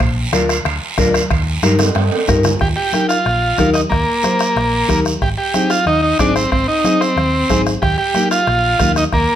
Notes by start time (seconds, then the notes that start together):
0.00 A#1, bombo low, bombo rim, high conga, high timbale, long guiro
0.32 D2 D4 F4 A#4, bombo rim, high conga, high timbale, short guiro
0.49 bombo rim, high timbale, short guiro
0.65 D2, bombo rim, high conga, high timbale, long guiro
0.98 D2 D4 F4 A#4, bombo low, bombo rim, high conga, high timbale, low timbale, short guiro
1.14 bombo rim, high timbale, short guiro
1.30 D#2, bombo low, bombo rim, high conga, high timbale, long guiro
1.63 G2 D#4 G4 A#4, bombo rim, high conga, high timbale, short guiro
1.79 bombo rim, low conga, high timbale, short guiro
1.95 G2, bombo rim, high timbale, long guiro
2.12 high timbale
2.28 G2 D#4 G4 A#4, bombo low, bombo rim, low timbale, short guiro
2.43 bombo rim, low conga, low timbale, short guiro
2.60 D#2 G4, bombo low, bombo rim, high conga, long guiro
2.76 G4
2.92 D#4 G4 A#4, bombo rim, high conga, short guiro
3.09 F4, bombo rim, short guiro
3.25 A#1, bombo rim, high conga, long guiro
3.58 D#2 D#4 G4 A#4, bombo low, bombo rim, high conga, short guiro
3.74 D#4, bombo rim, short guiro
3.90 D#2 A#3, bombo low, bombo rim, high conga, long guiro
4.23 D#4 G4 C5, bombo rim, high conga, short guiro
4.39 bombo rim, short guiro
4.56 A#1, bombo rim, high conga, long guiro
4.88 D#2 D#4 G4 A#4, bombo low, bombo rim, high conga, short guiro
5.05 bombo rim, short guiro
5.21 G#1 G4, bombo low, bombo rim, high conga, long guiro
5.38 G4
5.54 C4 D#4 G#4, bombo rim, high conga, short guiro
5.70 F4, bombo rim, short guiro
5.86 D#2 D#4, bombo rim, high conga, long guiro
6.02 D#4
6.19 G#1 C4 D4 D#4 G#4, bombo low, bombo rim, high conga, short guiro
6.36 C4, bombo rim, short guiro
6.52 G#1 C4, bombo low, bombo rim, long guiro
6.68 D#4
6.84 C4 D#4 G#4, bombo rim, high conga, short guiro
7.01 C4, bombo rim, short guiro
7.16 D#2, bombo rim, high conga, long guiro
7.49 G#1 C4 D#4 G#4, bombo low, bombo rim, high conga, short guiro
7.66 bombo rim, short guiro
7.82 D#2 G4, bombo low, bombo rim, high conga, long guiro
7.98 G4
8.14 A#3 D#4 G4, bombo rim, high conga, short guiro
8.31 F4, bombo rim, short guiro
8.47 A#1, bombo rim, high conga, long guiro
8.79 D#2 A#3 D#4 G4, bombo low, bombo rim, high conga, short guiro
8.96 D#4, bombo rim, short guiro
9.12 D#2 A#3, bombo low, bombo rim, high conga, long guiro